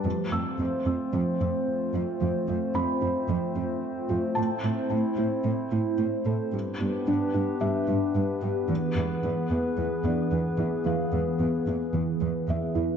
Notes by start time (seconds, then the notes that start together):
Already playing: A5
0.05 F2 F3 A3 C4 F4 C5
0.32 F2 A3 E6
0.59 F2 C4
0.86 F2 C4
1.13 F2 F3
1.41 F2 C4
1.94 F2 F4
2.21 F2 F3
2.48 F2 A3
2.75 F2 C4 B5
3.02 F2 C4
3.29 F2 F3
3.56 F2 C4
4.09 F2 F4
4.35 A2 A3 E4 A5
4.63 A2 C4
4.90 A2 E4
5.17 A2 E4
5.44 A2 A3
5.71 A2 E4
5.98 A2
6.25 A2 A4
6.53 G2 G3 B3 D4 G4 B4
6.80 G2 B3
7.07 G2 D4
7.34 G2 D4
7.61 G2 G3 E5
7.88 G2 D4
8.15 G2
8.42 G2 G4
8.69 E2 E3 G#4
8.96 E2 G#3
9.24 E2 B3
9.50 E2 B3
9.77 E2 E3
10.05 E2 B3 D4 D5
10.32 E2
10.58 E2 E4
10.86 E2 E3 F5
11.13 E2 G#3
11.40 E2 B3
11.67 E2 B3
11.94 E2 E3
12.21 E2 B3
12.48 E2 E4 E5
12.75 E2 E4